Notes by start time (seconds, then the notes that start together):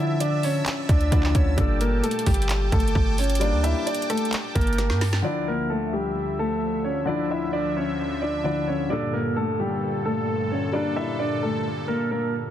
Already playing: D3 F3 E4 E5 A5 E6
0.00 E4 E5
0.20 D4 D5, closed hi-hat
0.43 C#4 C#5, open hi-hat
0.66 clap, closed hi-hat
0.89 D2 D4 D5, kick, closed hi-hat
1.01 closed hi-hat
1.11 D2 D3 F3 D4 E4 D5, kick, closed hi-hat
1.23 clap
1.35 D2 C#4 C#5, kick, closed hi-hat
1.57 G1 A#2 G3 D4 A4 D5 G5 A5 D6, kick, closed hi-hat
1.81 A#3 A#4, closed hi-hat
2.04 A3 A4, closed hi-hat
2.11 closed hi-hat
2.19 closed hi-hat
2.26 G1 G3 G4, kick, closed hi-hat, open hi-hat
2.34 closed hi-hat
2.42 closed hi-hat
2.49 clap, closed hi-hat
2.72 G1 A3 A4, kick, closed hi-hat
2.80 closed hi-hat
2.88 closed hi-hat
2.95 G1, kick
3.18 C#4 C#5, closed hi-hat, open hi-hat
3.24 closed hi-hat
3.30 closed hi-hat
3.35 closed hi-hat
3.39 G3 A#3 D4 D5, closed hi-hat
3.52 D2
3.64 E4 E5, closed hi-hat
3.87 D4 D5, closed hi-hat
3.95 closed hi-hat
4.02 closed hi-hat
4.10 A3 A4, cross-stick, closed hi-hat
4.17 closed hi-hat
4.25 closed hi-hat
4.33 clap, closed hi-hat
4.55 G1 A#3 A#4, kick, closed hi-hat
4.61 closed hi-hat
4.67 closed hi-hat
4.73 closed hi-hat
4.78 A#3 A#4, snare, closed hi-hat
4.90 G2, snare
5.01 snare, open hi-hat
5.13 snare
5.22 D2 D3 F3 D4 E4 D5 E5
5.48 A#3 A#4
5.70 A3 A4
5.93 G3 G4
6.39 A3 A4
6.84 C#4 C#5
7.05 D3 F3 D4 E4 D5 E5
7.31 E4 E5
7.53 D4 D5
7.77 C#4 C#5
8.22 D4 D5
8.44 D3 F3 D4 E4 D5
8.67 C#4 C#5
8.89 G2 A#2 G3 D4 A4 D5
9.13 A#3 A#4
9.36 A3 A4
9.60 G3 G4
10.05 A3 A4
10.51 C#4 C#5
10.72 G3 A#3 D4 D5
10.96 E4 E5
11.19 D4 D5
11.43 A3 A4
11.88 A#3 A#4
12.11 A#3 A#4